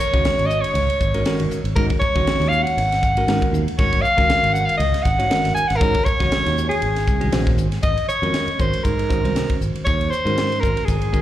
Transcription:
Already playing: C#5
0.00 hi-hat pedal
0.13 C#2 D#3 G#3 C#4 F#4 C#5, kick, ride
0.25 muted fretless electric bass stroke, snare, ride
0.39 G#1, ride
0.46 D#5, hi-hat pedal
0.61 C#5, ride
0.74 C#2, ride
0.90 ride
1.01 G#1, kick, hi-hat pedal
1.14 D#3 G#3 C#4 F#4 A#4, ride
1.26 D#3 G#3 C#4 F#4 A#4, snare, ride
1.40 G#1, ride
1.51 muted fretless electric bass stroke, hi-hat pedal
1.64 G#1, ride
1.75 G#2 D#3 G#3 C#4 F#4 A#4, kick, ride
1.90 kick, ride
2.00 C#5, muted fretless electric bass stroke, kick, hi-hat pedal
2.15 F#1 D#3 G#3 C#4 F#4 C#5, kick, ride
2.27 muted fretless electric bass stroke, snare, ride
2.40 D#2, snare, ride
2.48 F5, hi-hat pedal
2.63 F#5
2.67 ride
2.77 G#1, ride
2.92 snare, ride
3.03 kick, hi-hat pedal
3.17 D#3 G#3 C#4 F#4 A#4, ride
3.27 G#2 D#3 G#3 C#4 F#4 A#4, snare, ride
3.42 kick, ride
3.52 D#2, hi-hat pedal
3.66 muted fretless electric bass stroke, ride
3.78 G#1 D#3 G#3 C#4 F#4 A#4 C#5, kick, ride
3.93 kick, ride
4.02 F5, hi-hat pedal
4.17 C#2 D#3 G#3 C#4 F#4 A#4, kick, snare, ride
4.29 muted fretless electric bass stroke, snare, ride
4.43 G#1, ride
4.53 F#5, hi-hat pedal
4.65 F5
4.69 ride
4.77 C#2 D#5, ride
4.94 snare, ride
5.03 G#1 F#5, kick, snare, hi-hat pedal
5.19 D#3 G#3 C#4 F#4 C#5, ride
5.30 D#3 G#3 C#4 F#4 A#4, snare, ride
5.44 G#1, snare, ride
5.54 G#5, muted fretless electric bass stroke, hi-hat pedal
5.68 G#1 F#5, snare, ride
5.76 A#4
5.81 G#2 D#3 G#3 C#4 F#4 C#5, kick, ride
5.94 kick, ride
6.04 C#5, muted fretless electric bass stroke, kick, hi-hat pedal
6.20 F#1 D#3 G#3 C#4 F#4 C#5, kick, snare, ride
6.32 muted fretless electric bass stroke, snare, ride
6.46 D#2, snare, ride
6.58 hi-hat pedal
6.69 G#4, ride
6.82 G#1, ride
6.96 snare, ride
7.07 C2, kick, hi-hat pedal
7.21 D#3 G#3 C#4 F#4 G#4, ride
7.32 A#1 D#3 G#3 C#4 F#4 C5, snare, ride
7.47 kick, snare, ride
7.57 G#1, hi-hat pedal
7.72 snare, ride
7.83 G#1 D#5, kick, hi-hat pedal, ride
7.97 ride
8.09 C#5, muted fretless electric bass stroke, hi-hat pedal
8.22 F2 D#3 G#3 C#4 F#4 A#4, ride
8.34 snare, hi-hat pedal, ride
8.48 muted fretless electric bass stroke, ride
8.58 G#1 D#3 G#3 C#4 F#4 A#4 C5, kick, hi-hat pedal
8.73 ride
8.84 G#2 A#4, kick, hi-hat pedal, ride
8.99 ride
9.09 D#3 G#3 C#4 F#4 C5, kick, hi-hat pedal
9.23 C2 D#3 G#3 C#4 F#4 C5, ride
9.36 snare, hi-hat pedal, ride
9.50 muted fretless electric bass stroke, kick, ride
9.61 G#1, hi-hat pedal
9.75 muted fretless electric bass stroke, ride
9.85 D#2 C#5, kick, hi-hat pedal, ride
10.01 ride
10.10 C5, muted fretless electric bass stroke, hi-hat pedal
10.25 G#2 D#3 G#3 C#4 F#4 A#4, ride
10.38 snare, hi-hat pedal, ride
10.52 ride
10.60 G#1 D#3 G#3 C#4 F#4 A#4, kick, hi-hat pedal
10.77 ride
10.85 G#1 G#4, kick, hi-hat pedal, ride
11.02 ride
11.13 D#3 G#3 C#4 F#4 A#4, kick, hi-hat pedal

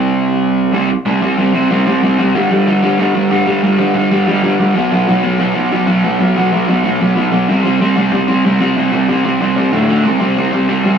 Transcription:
Already playing: C3 G3 C4
0.72 C3 G3 C4
1.06 C3 G3 C4
1.21 C3 G3 C4
1.37 C3 G3 C4
1.54 C3 G3 C4
1.70 C3 G3 C4
1.86 C3 G3 C4
2.02 C3 G3 C4
2.19 C3 G3 C4
2.35 G2 D3 G3
2.51 G2 D3 G3
2.67 G2 D3 G3
2.83 G2 D3 G3
2.99 G2 D3 G3
3.15 G2 D3 G3
3.31 G2 D3 G3
3.47 G2 D3 G3
3.63 G2 D3 G3
3.78 G2 D3 G3
3.94 G2 D3 G3
4.11 G2 D3 G3
4.27 G2 D3 G3
4.43 G2 D3 G3
4.60 G2 D3 G3
4.75 B2 F#3 B3
4.92 B2 F#3 B3
5.07 B2 F#3 B3
5.24 B2 F#3 B3
5.39 B2 F#3 B3
5.55 B2 F#3 B3
5.71 B2 F#3 B3
5.87 B2 F#3 B3
6.04 B2 F#3 B3
6.20 B2 F#3 B3
6.36 B2 F#3 B3
6.52 B2 F#3 B3
6.68 B2 F#3 B3
6.84 B2 F#3 B3
7.00 B2 F#3 B3
7.16 B2 F#3 B3
7.32 B2 F#3 B3
7.49 C3 G3 C4
7.65 C3 G3 C4
7.80 C3 G3 C4
7.97 C3 G3 C4
8.12 C3 G3 C4
8.28 C3 G3 C4
8.44 C3 G3 C4
8.60 C3 G3 C4
8.77 C3 G3 C4
8.93 C3 G3 C4
9.09 C3 G3 C4
9.25 C3 G3 C4
9.40 C3 G3 C4
9.56 C3 G3 C4
9.72 D2 A2 D3
9.88 D2 A2 D3
10.05 C3 G3 C4
10.21 C3 G3 C4
10.38 C3 G3 C4
10.53 C3 G3 C4
10.69 C3 G3 C4
10.85 C3 G3 C4

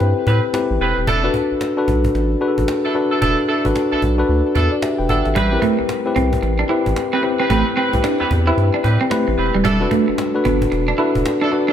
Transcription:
Already playing: C4 E4 G4 A4 B4
0.00 G2, cajon slap
0.17 cajon slap
0.27 A2 C4 G4 B4, cajon bass
0.44 cajon slap
0.53 C4 E4 G4 B4, cajon slap
0.71 A1, cajon slap
0.81 E1 C4 G4 B4, cajon slap
0.98 D#1, cajon slap
1.07 E1 D4 E4 A4, cajon bass
1.24 D4 F#4 A4 B4, cajon slap
1.34 cajon bass
1.51 B1, cajon slap
1.61 cajon slap
1.77 D4 F#4 A4 B4, cajon slap
1.88 B1, cajon bass
2.04 cajon bass
2.15 A1, cajon slap
2.32 cajon slap
2.41 D4 F#4 G#4 B4, cajon slap
2.48 A4
2.58 A1, cajon bass
2.68 cajon slap
2.84 D4 E4 A4, cajon slap
2.95 D4 F#4 A4 B4, cajon slap
3.11 D4 E4 A4, cajon slap
3.21 E1 D4 E4 A4, cajon bass
3.39 cajon slap
3.48 D4 E4 A4, cajon slap
3.65 A1 D4 F#4 A4 B4, cajon bass
3.76 cajon slap
3.91 B1 D4 E4 A4, cajon slap
4.02 B1, cajon bass
4.18 D4 F#4 A4 B4, cajon slap
4.29 D2, cajon slap
4.46 cajon slap
4.55 E2 D4 E4 A4 B4, cajon bass
4.72 F#4 D5, cajon slap
4.82 G4 E5, cajon slap
4.99 E1 B4 G5, cajon slap
5.09 G1 D4 E4 A4 F#5, cajon bass
5.25 G#1 G4 E5, cajon slap
5.35 A1 G3 C4 G4 B4, cajon bass
5.52 C4 E4 G4 A#4
5.60 A3 B4, cajon bass
5.79 C2, muted clean electric guitar stroke, cajon slap
5.89 cajon slap
6.06 C4 E4 G4 B4, cajon slap
6.16 C2 C4, cajon bass
6.33 cajon bass
6.43 A1, muted clean electric guitar stroke, cajon slap
6.59 D4, cajon slap
6.69 C4 E4 G4 B4, cajon slap
6.86 A1, cajon bass
6.96 cajon slap
7.13 C4 G4 B4, cajon slap
7.23 C4 E4 G4 B4, muted clean electric guitar stroke, cajon slap
7.39 C4 G4 B4, cajon slap
7.50 A1 A3 C4 G4 B4, cajon bass
7.67 muted clean electric guitar stroke, cajon slap
7.76 C4 G4 B4, cajon slap
7.93 C2 C4 E4 G4 B4, cajon bass
8.04 D4, cajon slap
8.20 E2 C4 G4 B4, muted clean electric guitar stroke, cajon slap
8.31 E2, cajon bass
8.47 C4 E4 G4 B4
8.57 G2, cajon slap
8.74 D4, cajon slap
8.84 A2 C4 G4 B4, muted clean electric guitar stroke, cajon bass
9.01 C4, cajon slap
9.10 A3 C4 E4 G4 B4, cajon slap
9.28 A1, muted clean electric guitar stroke, cajon slap
9.37 E1 C4 G4 B4, cajon slap
9.54 D#1 G3, cajon slap
9.64 E1 G3 D4 E4 A4, cajon bass
9.80 D4 F#4 A4 B4, cajon slap
9.91 A3, cajon bass
10.08 G1, muted clean electric guitar stroke, cajon slap
10.18 cajon slap
10.34 D4 F#4 A4 B4, cajon slap
10.45 G1 B3, cajon bass
10.62 cajon bass
10.72 E1, muted clean electric guitar stroke, cajon slap
10.88 D4, cajon slap
10.98 D4 E4 F#4 A4 B4, cajon slap
11.15 E1, cajon bass
11.26 cajon slap
11.41 D4 E4 A4, cajon slap
11.52 D4 F#4 A4 B4, muted clean electric guitar stroke, cajon slap
11.68 D4 E4 A4, cajon slap

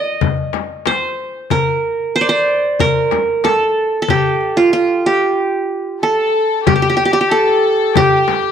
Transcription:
Already playing: D#5
0.21 frame drum, darbuka dum
0.37 darbuka ka
0.53 darbuka tek, frame drum
0.86 C5, darbuka tek, frame drum
1.50 A#4, darbuka dum, frame drum
2.16 C5
2.21 D5
2.29 C5
2.47 darbuka ka
2.79 A#4, darbuka dum, frame drum
2.96 darbuka ka
3.11 darbuka tek, frame drum
3.44 A4, darbuka tek, frame drum
4.02 A4
4.08 G4, darbuka dum, frame drum
4.25 darbuka ka
4.40 darbuka ka
4.56 F4, darbuka ka
4.73 F4
5.06 G4
5.21 darbuka ka
6.03 A4
6.67 G4, darbuka dum, frame drum
6.76 G4
6.82 G4
6.90 G4
6.97 G4, darbuka ka
7.05 G4
7.13 G4
7.21 G4
7.31 A4
7.95 G4, darbuka dum, frame drum
8.12 darbuka ka
8.28 darbuka tek, frame drum

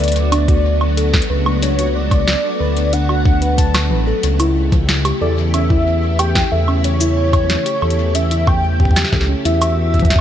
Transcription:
Already playing: F#3 A3 B3 D4 F#4
0.00 D2 B4 D5, closed hi-hat
0.08 closed hi-hat
0.12 closed hi-hat
0.16 closed hi-hat
0.32 D4, closed hi-hat, high woodblock
0.48 F#4, kick, closed hi-hat
0.81 high woodblock
0.97 A4, closed hi-hat
1.14 kick, snare
1.22 closed hi-hat
1.30 C#2 B4
1.46 D4, high woodblock
1.62 D4 C#5, closed hi-hat
1.79 F#4, closed hi-hat
1.95 D5
2.11 kick, closed hi-hat, high woodblock
2.28 snare
2.44 A4
2.60 D2 B4
2.77 closed hi-hat
2.93 D4 F#5, closed hi-hat
3.09 F#4, high woodblock
3.25 D4, kick
3.42 B4, closed hi-hat
3.58 A5, kick, closed hi-hat
3.75 snare, closed hi-hat, cabasa, high woodblock
3.91 A1 B4, low conga
4.07 A4
4.23 C#2 C#3 C#4 E4 G4, closed hi-hat
4.40 E4, closed hi-hat, cabasa, high woodblock
4.72 kick, closed hi-hat, low conga
4.89 snare, closed hi-hat
5.05 G4, closed hi-hat, high woodblock
5.21 E2 A4 D5
5.54 C#4 E5, closed hi-hat, high woodblock
5.70 E4, kick
6.19 G4 G5, closed hi-hat, high woodblock
6.35 kick, snare, closed hi-hat
6.52 E2 A4 E5
6.68 C#4, high woodblock
6.84 C#4 C#5, closed hi-hat
7.01 E4, closed hi-hat, cabasa
7.33 kick, closed hi-hat, low conga, high woodblock
7.44 low conga
7.50 snare, closed hi-hat
7.55 low conga
7.66 G4, closed hi-hat
7.82 E2 A4, high woodblock
7.90 closed hi-hat
8.15 C#4 E5, closed hi-hat
8.31 E4, closed hi-hat
8.47 G5, kick, high woodblock
8.80 G4, kick
8.85 kick
8.91 kick
8.96 snare, closed hi-hat, cabasa, high woodblock
9.04 snare
9.13 C#2 A4, kick, snare, low conga
9.21 snare
9.29 C#4
9.45 E2 E3 B3 E4 F#4 E5, closed hi-hat
9.62 F#4, closed hi-hat, cabasa, high woodblock
9.94 kick, closed hi-hat
9.99 kick, closed hi-hat, low conga
10.05 kick, closed hi-hat
10.10 kick, snare, closed hi-hat
10.16 kick

